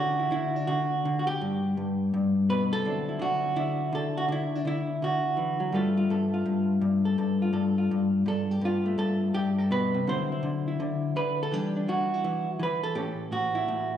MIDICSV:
0, 0, Header, 1, 2, 480
1, 0, Start_track
1, 0, Tempo, 361228
1, 1863, Time_signature, 4, 2, 24, 8
1, 18565, End_track
2, 0, Start_track
2, 0, Title_t, "Hollow-body jazz guitar"
2, 0, Program_c, 0, 26
2, 0, Note_on_c, 0, 50, 62
2, 0, Note_on_c, 0, 52, 47
2, 0, Note_on_c, 0, 66, 84
2, 260, Note_on_c, 0, 64, 40
2, 394, Note_off_c, 0, 50, 0
2, 409, Note_off_c, 0, 64, 0
2, 410, Note_on_c, 0, 50, 58
2, 425, Note_on_c, 0, 64, 81
2, 745, Note_off_c, 0, 64, 0
2, 745, Note_on_c, 0, 62, 74
2, 879, Note_off_c, 0, 66, 0
2, 888, Note_off_c, 0, 50, 0
2, 895, Note_on_c, 0, 66, 75
2, 904, Note_on_c, 0, 50, 62
2, 1384, Note_off_c, 0, 50, 0
2, 1390, Note_off_c, 0, 62, 0
2, 1399, Note_on_c, 0, 50, 65
2, 1568, Note_off_c, 0, 66, 0
2, 1586, Note_on_c, 0, 66, 66
2, 1683, Note_off_c, 0, 66, 0
2, 1688, Note_on_c, 0, 67, 90
2, 1850, Note_off_c, 0, 50, 0
2, 1862, Note_off_c, 0, 52, 0
2, 1879, Note_on_c, 0, 43, 67
2, 2340, Note_off_c, 0, 43, 0
2, 2356, Note_on_c, 0, 43, 62
2, 2824, Note_off_c, 0, 43, 0
2, 2840, Note_on_c, 0, 43, 65
2, 3301, Note_off_c, 0, 67, 0
2, 3315, Note_on_c, 0, 47, 58
2, 3322, Note_on_c, 0, 71, 85
2, 3496, Note_off_c, 0, 71, 0
2, 3618, Note_off_c, 0, 47, 0
2, 3624, Note_on_c, 0, 69, 104
2, 3641, Note_on_c, 0, 48, 59
2, 3770, Note_off_c, 0, 43, 0
2, 3783, Note_off_c, 0, 48, 0
2, 3788, Note_on_c, 0, 50, 61
2, 3797, Note_on_c, 0, 54, 46
2, 3802, Note_on_c, 0, 60, 44
2, 3819, Note_on_c, 0, 64, 43
2, 4098, Note_off_c, 0, 64, 0
2, 4104, Note_on_c, 0, 64, 43
2, 4238, Note_off_c, 0, 50, 0
2, 4244, Note_on_c, 0, 50, 63
2, 4269, Note_off_c, 0, 69, 0
2, 4275, Note_on_c, 0, 66, 92
2, 4727, Note_off_c, 0, 50, 0
2, 4733, Note_off_c, 0, 64, 0
2, 4733, Note_on_c, 0, 50, 63
2, 4738, Note_on_c, 0, 64, 71
2, 5201, Note_off_c, 0, 50, 0
2, 5217, Note_on_c, 0, 50, 67
2, 5228, Note_off_c, 0, 66, 0
2, 5247, Note_on_c, 0, 69, 85
2, 5542, Note_off_c, 0, 69, 0
2, 5547, Note_on_c, 0, 66, 83
2, 5645, Note_off_c, 0, 66, 0
2, 5678, Note_off_c, 0, 50, 0
2, 5688, Note_off_c, 0, 54, 0
2, 5691, Note_off_c, 0, 60, 0
2, 5694, Note_on_c, 0, 50, 65
2, 5698, Note_off_c, 0, 64, 0
2, 5743, Note_on_c, 0, 64, 80
2, 6050, Note_off_c, 0, 64, 0
2, 6050, Note_on_c, 0, 62, 77
2, 6164, Note_off_c, 0, 50, 0
2, 6180, Note_on_c, 0, 50, 60
2, 6202, Note_off_c, 0, 62, 0
2, 6210, Note_on_c, 0, 64, 85
2, 6661, Note_off_c, 0, 50, 0
2, 6675, Note_on_c, 0, 50, 62
2, 6697, Note_on_c, 0, 66, 69
2, 7135, Note_on_c, 0, 52, 55
2, 7156, Note_off_c, 0, 64, 0
2, 7436, Note_off_c, 0, 52, 0
2, 7441, Note_on_c, 0, 54, 59
2, 7607, Note_on_c, 0, 43, 63
2, 7608, Note_off_c, 0, 50, 0
2, 7609, Note_off_c, 0, 54, 0
2, 7614, Note_on_c, 0, 55, 49
2, 7631, Note_on_c, 0, 57, 52
2, 7637, Note_on_c, 0, 65, 47
2, 7639, Note_off_c, 0, 66, 0
2, 7648, Note_on_c, 0, 69, 55
2, 7932, Note_off_c, 0, 65, 0
2, 7937, Note_on_c, 0, 65, 53
2, 8103, Note_off_c, 0, 43, 0
2, 8109, Note_on_c, 0, 43, 63
2, 8116, Note_off_c, 0, 69, 0
2, 8121, Note_on_c, 0, 69, 46
2, 8416, Note_off_c, 0, 65, 0
2, 8422, Note_on_c, 0, 65, 50
2, 8574, Note_off_c, 0, 43, 0
2, 8579, Note_on_c, 0, 43, 63
2, 9050, Note_off_c, 0, 43, 0
2, 9055, Note_on_c, 0, 43, 67
2, 9367, Note_off_c, 0, 69, 0
2, 9373, Note_on_c, 0, 69, 53
2, 9534, Note_off_c, 0, 43, 0
2, 9540, Note_on_c, 0, 43, 62
2, 9547, Note_off_c, 0, 69, 0
2, 9552, Note_on_c, 0, 69, 36
2, 9582, Note_off_c, 0, 65, 0
2, 9586, Note_off_c, 0, 55, 0
2, 9861, Note_on_c, 0, 65, 40
2, 9997, Note_off_c, 0, 43, 0
2, 10003, Note_on_c, 0, 43, 62
2, 10009, Note_off_c, 0, 69, 0
2, 10014, Note_on_c, 0, 69, 40
2, 10333, Note_off_c, 0, 65, 0
2, 10339, Note_on_c, 0, 65, 40
2, 10508, Note_off_c, 0, 43, 0
2, 10514, Note_on_c, 0, 43, 64
2, 10957, Note_off_c, 0, 43, 0
2, 10973, Note_on_c, 0, 43, 69
2, 10998, Note_off_c, 0, 69, 0
2, 11003, Note_on_c, 0, 69, 78
2, 11309, Note_off_c, 0, 69, 0
2, 11309, Note_on_c, 0, 67, 79
2, 11431, Note_off_c, 0, 43, 0
2, 11446, Note_off_c, 0, 65, 0
2, 11447, Note_on_c, 0, 43, 69
2, 11487, Note_off_c, 0, 57, 0
2, 11497, Note_on_c, 0, 65, 84
2, 11769, Note_on_c, 0, 57, 45
2, 11913, Note_off_c, 0, 43, 0
2, 11929, Note_on_c, 0, 43, 66
2, 11936, Note_off_c, 0, 67, 0
2, 11942, Note_on_c, 0, 69, 91
2, 12396, Note_off_c, 0, 43, 0
2, 12412, Note_on_c, 0, 43, 64
2, 12413, Note_off_c, 0, 69, 0
2, 12418, Note_on_c, 0, 67, 88
2, 12439, Note_off_c, 0, 65, 0
2, 12604, Note_off_c, 0, 67, 0
2, 12736, Note_on_c, 0, 69, 85
2, 12899, Note_on_c, 0, 47, 58
2, 12905, Note_off_c, 0, 69, 0
2, 12914, Note_on_c, 0, 71, 87
2, 13207, Note_off_c, 0, 47, 0
2, 13213, Note_on_c, 0, 48, 59
2, 13356, Note_off_c, 0, 43, 0
2, 13380, Note_off_c, 0, 48, 0
2, 13381, Note_off_c, 0, 57, 0
2, 13385, Note_on_c, 0, 50, 63
2, 13388, Note_off_c, 0, 71, 0
2, 13402, Note_on_c, 0, 54, 43
2, 13409, Note_on_c, 0, 60, 43
2, 13410, Note_on_c, 0, 72, 83
2, 13419, Note_on_c, 0, 64, 37
2, 13708, Note_off_c, 0, 64, 0
2, 13713, Note_on_c, 0, 64, 41
2, 13840, Note_off_c, 0, 50, 0
2, 13856, Note_on_c, 0, 50, 61
2, 14183, Note_off_c, 0, 64, 0
2, 14188, Note_on_c, 0, 64, 40
2, 14332, Note_off_c, 0, 50, 0
2, 14348, Note_on_c, 0, 50, 64
2, 14814, Note_off_c, 0, 50, 0
2, 14830, Note_on_c, 0, 50, 64
2, 14833, Note_off_c, 0, 72, 0
2, 14838, Note_on_c, 0, 71, 85
2, 15138, Note_off_c, 0, 71, 0
2, 15184, Note_on_c, 0, 69, 87
2, 15285, Note_off_c, 0, 50, 0
2, 15293, Note_off_c, 0, 54, 0
2, 15295, Note_off_c, 0, 60, 0
2, 15302, Note_on_c, 0, 52, 59
2, 15314, Note_on_c, 0, 55, 46
2, 15321, Note_on_c, 0, 62, 44
2, 15329, Note_off_c, 0, 64, 0
2, 15329, Note_off_c, 0, 69, 0
2, 15329, Note_on_c, 0, 67, 83
2, 15619, Note_off_c, 0, 62, 0
2, 15634, Note_on_c, 0, 62, 41
2, 15785, Note_off_c, 0, 52, 0
2, 15791, Note_on_c, 0, 52, 60
2, 15799, Note_on_c, 0, 66, 83
2, 16127, Note_off_c, 0, 67, 0
2, 16127, Note_on_c, 0, 64, 66
2, 16264, Note_off_c, 0, 52, 0
2, 16269, Note_on_c, 0, 52, 64
2, 16578, Note_off_c, 0, 66, 0
2, 16730, Note_off_c, 0, 52, 0
2, 16735, Note_on_c, 0, 52, 67
2, 16761, Note_off_c, 0, 64, 0
2, 16782, Note_on_c, 0, 71, 85
2, 17050, Note_off_c, 0, 71, 0
2, 17055, Note_on_c, 0, 69, 89
2, 17207, Note_off_c, 0, 55, 0
2, 17210, Note_on_c, 0, 45, 68
2, 17214, Note_off_c, 0, 62, 0
2, 17214, Note_on_c, 0, 67, 78
2, 17221, Note_off_c, 0, 52, 0
2, 17221, Note_on_c, 0, 52, 43
2, 17225, Note_off_c, 0, 69, 0
2, 17228, Note_on_c, 0, 61, 43
2, 17682, Note_off_c, 0, 45, 0
2, 17697, Note_on_c, 0, 45, 65
2, 17706, Note_on_c, 0, 66, 79
2, 17999, Note_off_c, 0, 67, 0
2, 18005, Note_on_c, 0, 64, 65
2, 18165, Note_off_c, 0, 45, 0
2, 18181, Note_on_c, 0, 45, 66
2, 18489, Note_off_c, 0, 66, 0
2, 18565, Note_off_c, 0, 45, 0
2, 18565, Note_off_c, 0, 52, 0
2, 18565, Note_off_c, 0, 61, 0
2, 18565, Note_off_c, 0, 64, 0
2, 18565, End_track
0, 0, End_of_file